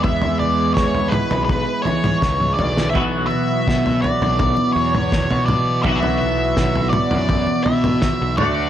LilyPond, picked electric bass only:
\new Staff \with { instrumentName = "Picked electric bass" } { \clef bass \time 4/4 \key b \dorian \tempo 4 = 83 e,4 e,8 r16 b,,8 r16 e8 cis,8 b,,8 | b,,8 r8 b,8 r16 b,,8 r16 e,8. b,8. | b,,4 b,,8 r16 fis,8 r16 b,8 r16 b,,16 d,8 | }